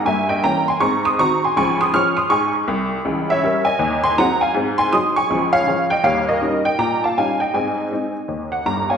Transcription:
0.05 0.37 G2 medium
0.05 0.27 A#3 soft
0.05 0.28 E5 medium
0.05 0.29 G#5 medium
0.29 0.42 D#5 medium
0.29 0.42 G5 medium
0.44 0.64 E3 soft
0.44 0.64 A#3 soft
0.44 0.64 C#4 soft
0.44 0.66 G5 medium
0.44 0.67 A#5 medium
0.68 0.81 G#5 medium
0.68 0.81 C6 medium
0.80 1.12 G#2 medium
0.80 1.02 C4 soft
0.80 1.03 A#5 medium
0.80 1.04 C#6 medium
1.05 1.17 C6 medium
1.05 1.18 D#6 loud
1.19 1.39 D#3 soft
1.19 1.40 C4 soft
1.19 1.40 F#4 medium
1.19 1.41 A#5 medium
1.19 1.42 C#6 loud
1.44 1.56 G#5 medium
1.44 1.56 C6 medium
1.57 1.87 C#2 medium
1.57 1.78 F3 medium
1.57 1.78 G#5 medium
1.57 1.80 C#6 medium
1.81 1.92 C6 medium
1.81 1.93 D#6 loud
1.94 2.14 F3 medium
1.94 2.14 C#4 medium
1.94 2.14 G#4 medium
1.94 2.16 C#6 medium
1.94 2.17 F6 loud
2.17 2.29 C6 medium
2.17 2.30 D#6 medium
2.30 2.61 G#2 medium
2.30 2.53 G#5 medium
2.30 2.53 C#6 medium
2.68 2.97 C2 medium
3.05 3.36 C#2 medium
3.05 3.27 E3 soft
3.30 3.64 C#5 medium
3.30 3.66 E5 medium
3.43 3.64 G3 medium
3.43 3.63 C#4 soft
3.43 3.64 A#4 medium
3.65 4.01 D#5 medium
3.65 4.02 G#5 medium
3.79 4.11 D#2 medium
4.04 4.17 G#5 medium
4.04 4.17 C6 loud
4.18 4.38 F#3 medium
4.18 4.38 C4 medium
4.18 4.39 G#4 medium
4.18 4.40 F#5 medium
4.18 4.41 A#5 loud
4.41 4.54 F5 medium
4.41 4.54 G#5 medium
4.54 4.86 G#2 medium
4.54 4.76 C4 soft
4.78 4.91 G#5 medium
4.78 4.91 C6 loud
4.93 5.13 F#3 soft
4.93 5.13 D#4 soft
4.93 5.13 G#4 soft
4.93 5.15 C6 medium
4.93 5.16 D#6 loud
5.16 5.51 G#5 medium
5.16 5.53 C#6 medium
5.30 5.61 C#2 medium
5.30 5.51 F3 medium
5.53 5.88 C#5 medium
5.53 5.90 F5 loud
5.67 5.87 F3 soft
5.67 5.87 C#4 soft
5.67 5.88 G#4 soft
5.90 6.04 D#5 medium
5.90 6.04 G5 medium
6.04 6.35 D#2 medium
6.04 6.25 G3 medium
6.04 6.27 C#5 medium
6.04 6.27 F5 medium
6.29 6.63 A#4 medium
6.29 6.64 D#5 medium
6.42 6.62 G3 soft
6.42 6.62 C#4 medium
6.42 6.63 D#4 soft
6.65 6.78 D#5 medium
6.65 6.78 G5 medium
6.78 7.10 A#2 medium
6.78 7.01 G5 medium
6.78 7.02 A#5 medium
7.04 7.16 F5 medium
7.04 7.16 A5 medium
7.18 7.38 G3 soft
7.18 7.38 C#4 soft
7.18 7.38 D#4 soft
7.18 7.39 F5 medium
7.18 7.40 G#5 medium
7.40 7.53 D#5 medium
7.40 7.53 G5 medium
7.54 7.85 G#2 medium
7.54 7.76 C4 soft
7.54 8.62 D#5 soft
7.54 8.66 G#5 medium
7.92 8.12 G#3 soft
7.92 8.12 C4 soft
7.92 8.12 D#4 soft
8.28 8.60 D#2 soft
8.52 8.65 F#5 medium
8.65 8.95 G1 medium
8.65 8.95 G2 medium
8.65 8.89 A#5 medium
8.90 8.97 C#5 soft
8.90 8.97 F5 soft
8.90 8.97 G#5 medium

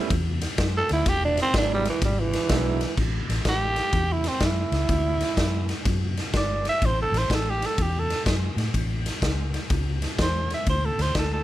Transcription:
0.10 0.44 E2 loud
0.10 kick loud
0.10 ride medium
0.41 snare soft
0.41 ride medium
0.58 0.80 F#2 medium
0.58 kick medium
0.58 snare loud
0.58 ride medium
0.77 0.91 A4 loud
0.89 1.02 D2 loud
0.89 1.10 E4 loud
0.89 snare soft
0.89 ride medium
1.06 1.40 E1 loud
1.06 1.23 G4 loud
1.06 kick medium
1.06 snare soft
1.06 ride medium
1.25 1.39 D4 loud
1.37 snare soft
1.37 ride medium
1.42 1.55 C4 loud
1.54 1.88 G#1 medium
1.54 1.83 F#3 medium
1.54 1.83 G#3 medium
1.54 1.83 B3 medium
1.54 1.83 D4 medium
1.54 1.71 D4 loud
1.54 1.83 E4 medium
1.54 kick medium
1.54 snare loud
1.54 ride medium
1.74 1.87 G3 loud
1.85 2.03 E3 medium
1.85 snare soft
1.85 ride medium
2.02 2.35 G#1 medium
2.02 2.21 G3 medium
2.02 kick loud
2.02 snare soft
2.02 ride medium
2.20 2.96 E3 loud
2.33 snare soft
2.33 ride medium
2.49 2.84 B1 medium
2.49 2.78 F#3 medium
2.49 2.78 G#3 medium
2.49 2.78 B3 medium
2.49 2.78 D4 medium
2.49 2.78 E4 loud
2.49 kick medium
2.49 snare loud
2.49 ride medium
2.81 snare soft
2.81 ride medium
2.97 3.20 A1 medium
2.97 kick medium
2.97 crash medium
3.29 3.41 A1 medium
3.29 snare soft
3.29 ride medium
3.45 3.79 A1 medium
3.45 4.14 G4 loud
3.45 kick medium
3.45 snare medium
3.45 ride medium
3.76 snare soft
3.76 ride medium
3.93 4.27 E2 medium
3.93 kick medium
3.93 ride medium
4.12 4.29 E4 medium
4.24 4.42 C4 medium
4.24 snare soft
4.24 ride medium
4.40 4.63 F#2 medium
4.40 kick medium
4.40 snare loud
4.40 ride medium
4.45 5.83 E4 medium
4.72 4.84 C#2 medium
4.72 snare soft
4.72 ride medium
4.89 5.23 D2 medium
4.89 kick medium
4.89 ride medium
5.21 snare soft
5.21 ride medium
5.37 5.71 F#2 medium
5.37 kick medium
5.37 snare medium
5.37 ride medium
5.69 snare soft
5.69 ride medium
5.85 6.19 F#2 medium
5.85 kick medium
5.85 snare soft
5.85 ride medium
6.17 snare soft
6.17 ride soft
6.33 6.68 G1 medium
6.33 6.67 D5 medium
6.33 kick medium
6.33 snare medium
6.33 ride medium
6.65 snare soft
6.65 ride medium
6.69 6.87 E5 medium
6.82 7.04 A1 medium
6.82 6.99 C5 medium
6.82 kick medium
6.82 ride medium
7.02 7.19 A4 medium
7.12 7.24 A1 medium
7.12 snare soft
7.12 ride medium
7.18 7.36 C5 medium
7.30 7.64 A1 medium
7.30 kick medium
7.30 snare loud
7.30 ride medium
7.34 7.52 A4 medium
7.50 7.68 G4 medium
7.62 7.84 A4 medium
7.62 snare soft
7.62 ride medium
7.78 8.12 E2 medium
7.78 kick medium
7.78 ride medium
7.82 8.01 G4 medium
7.99 8.23 A4 medium
8.10 snare soft
8.10 ride medium
8.26 8.48 F#2 medium
8.26 kick medium
8.26 snare medium
8.26 ride medium
8.56 8.68 A2 medium
8.56 snare soft
8.56 ride medium
8.74 9.08 A1 medium
8.74 kick medium
8.74 ride medium
9.06 snare soft
9.06 ride medium
9.22 9.56 C#2 medium
9.22 kick medium
9.22 snare medium
9.22 ride medium
9.54 snare soft
9.54 ride medium
9.70 10.05 C#2 medium
9.70 kick medium
9.70 ride medium
10.02 snare soft
10.02 ride medium
10.18 10.52 E2 medium
10.18 10.52 C5 medium
10.18 kick medium
10.18 snare loud
10.18 ride medium
10.50 10.68 E5 medium
10.50 snare soft
10.50 ride medium
10.66 10.89 D2 medium
10.66 10.87 C5 medium
10.66 kick medium
10.66 ride medium
10.85 11.03 A4 medium
10.98 11.10 D2 medium
10.98 11.16 C5 medium
10.98 snare soft
10.98 ride soft
11.15 11.44 D2 medium
11.15 11.32 A4 medium
11.15 kick medium
11.15 snare loud
11.15 ride medium
11.33 11.44 A4 medium

